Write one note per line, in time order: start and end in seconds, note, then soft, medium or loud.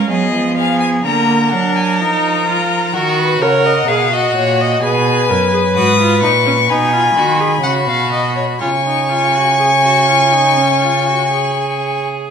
0.00 0.12 C#4 medium
0.10 0.33 F#3 medium
0.10 1.06 B3 medium
0.10 0.57 G#4 medium
0.10 0.56 D#5 medium
0.33 1.04 F3 medium
0.57 1.05 G#4 medium
0.57 0.79 F5 medium
0.80 0.88 G#5 medium
1.03 1.54 D3 medium
1.03 1.53 A#3 medium
1.03 2.91 A#4 medium
1.03 1.52 A#5 medium
1.50 2.01 F#3 medium
1.50 2.03 D4 medium
1.50 1.77 F#5 medium
1.75 1.98 G#5 medium
1.98 2.95 F3 medium
1.98 2.47 D#4 medium
1.98 2.95 A#5 medium
2.48 2.93 F4 medium
2.93 3.40 D#3 medium
2.93 3.43 F#4 loud
2.93 3.20 A#4 medium
2.93 4.82 F#5 medium
3.18 3.44 B4 medium
3.41 3.87 C#3 medium
3.41 3.88 A#4 loud
3.41 3.67 C#5 medium
3.66 3.90 D#5 medium
3.88 4.35 B2 medium
3.88 4.11 G#4 medium
3.88 4.15 F5 medium
4.12 4.81 F#4 medium
4.12 4.35 D#5 medium
4.36 4.82 A#2 medium
4.36 4.62 C#5 medium
4.61 4.83 D#5 medium
4.82 5.31 B2 loud
4.82 5.31 G#4 medium
4.82 6.72 B4 loud
4.82 5.74 G#5 medium
5.30 5.77 F#2 medium
5.30 5.52 A#4 medium
5.53 5.61 G#4 medium
5.76 6.23 G#2 medium
5.76 5.99 F#4 medium
5.76 6.22 D#6 medium
5.99 6.22 F4 medium
6.22 6.70 A#2 medium
6.22 6.31 D#4 medium
6.22 6.71 C#6 medium
6.46 6.54 C#4 medium
6.68 7.15 B2 medium
6.68 6.95 D#4 medium
6.68 7.63 G#5 medium
6.68 8.61 B5 medium
6.93 7.16 F4 medium
7.16 7.62 D#3 medium
7.16 7.42 F#4 medium
7.40 7.63 G#4 medium
7.63 7.89 C#3 medium
7.63 8.58 F#4 medium
7.63 7.71 F#5 medium
7.87 8.62 B2 medium
7.87 8.12 F5 medium
8.12 8.35 D#5 medium
8.36 8.44 C#5 medium
8.59 12.05 C#3 medium
8.59 8.68 F4 medium
8.59 12.01 G#5 medium
8.59 12.05 C#6 medium
8.85 9.11 D#4 medium
9.09 9.36 F4 medium
9.35 9.58 F#4 medium
9.59 9.67 G#4 medium
9.83 10.09 F#4 medium
10.08 10.34 F4 medium
10.32 10.59 D#4 medium
10.58 10.83 C#4 medium
10.82 11.08 F4 medium
11.06 11.31 F#4 medium
11.31 12.30 G#4 medium